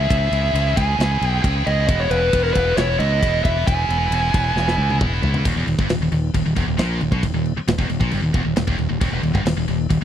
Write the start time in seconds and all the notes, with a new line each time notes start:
Already playing: E5
0.01 E4 G#4
0.10 C#2 E4 G#4, kick, ride
0.17 E4 G#4
0.25 E4 G#4
0.32 C#2 E4 G#4, ride
0.42 E4 G#4
0.49 E4 G#4
0.53 C#2 E4 G#4, ride
0.64 E4 G#4
0.73 E4 G#4
0.77 C#2 E4 G#5, kick, ride
0.81 G#4
0.89 E4 G#4
0.95 E4 G#4
0.99 C#2, snare, ride
1.03 E4 G#4
1.12 E4 G#4
1.19 B1 E4 G#4, ride
1.26 E4 G#4 G5
1.34 E4 G#4
1.42 C#2 E4 G#4 G5, kick, ride
1.49 E4 G#4
1.57 E4 G#4
1.64 C#2 E4 G#4 D#5, ride
1.73 E4 G#4
1.80 E4 G#4
1.87 E1 B3 E4 D#5, kick, ride
1.96 B3 E4 C#5
2.04 B3 E4
2.10 E1 B3 E4 B4, ride
2.19 B3 E4
2.27 B3 E4
2.33 E1 B3 E4, kick, ride
2.43 B3 E4 A#4
2.51 B3 E4 B4
2.55 E1 B3 E4, kick, ride
2.66 B3 E4
2.74 E1 B3 E4 C#5, ride
2.78 B3 E4, snare
2.89 B3 E4
2.97 C#2 B3 E4 D#5, ride
3.05 B3 E4
3.12 B3 E4
3.19 E1 B3 E4, kick, ride
3.27 B3 E4
3.34 B3 E4
3.43 E1 B3 E4 E5, kick, ride
3.50 B3 E4
3.57 B3 E4
3.67 E1 B3 E4 G#5, kick, ride
3.75 B3 E4
3.82 B3 E4
3.89 E1 B3 E4, ride
3.98 B3 E4
4.06 B3 E4
4.11 E1 B3, ride
4.15 E4
4.21 B3 E4
4.30 B3 E4
4.34 E1 B3 E4, kick, ride
4.45 B3 E4
4.52 E1 B3 E4
4.57 B3 E4, snare
4.68 B3 E4, snare
4.75 C#2 B3 E4
4.83 B3 E4
4.90 B3 E4, high tom
4.99 E1 B3 E4, kick, mid tom
5.07 B3 E4
5.14 B3 E4
5.22 C#2 B3 E4, floor tom
5.29 B3 E4
5.34 E4, floor tom
5.39 B3
5.45 D#1 D#2, kick, crash
5.56 E1 E2
5.67 D#1 D#2, crash
5.79 G1 G2, kick
5.89 D#1 D#2, snare, crash
6.01 D#1 D#2
6.12 D#1 D#2, crash
6.34 D#1 D#2, kick, crash
6.45 D#1 D#2
6.56 E1 E2, kick, crash
6.68 D#1 D#2
6.78 A#1 A#2, snare, crash
7.00 D#1 D#2, crash
7.12 B1 B2, kick
7.23 D#1 D#2, kick, crash
7.34 D#1 D#2
7.46 crash
7.57 muted fingered electric bass stroke, muted distorted electric guitar stroke
7.68 D#1 D#2, snare, crash
7.78 E1 E2, kick
7.90 D#1 D#2, crash
8.01 A#1 A#2, kick
8.11 G1 G2, crash
8.22 D#1 D#2
8.34 E1 E2, kick, crash
8.44 D#1 D#2
8.56 D#1 D#2, snare, crash
8.67 D#1 D#2, kick
8.78 D#1 D#2, crash
8.89 D#1 D#2
9.00 D#1 D#2, kick, crash
9.12 E1 E2
9.23 D#1 D#2, crash
9.34 G1 G2, kick
9.45 D#1 D#2, snare, crash
9.57 D#1 D#2
9.68 D#1 D#2, crash
9.90 D#1 D#2, kick, crash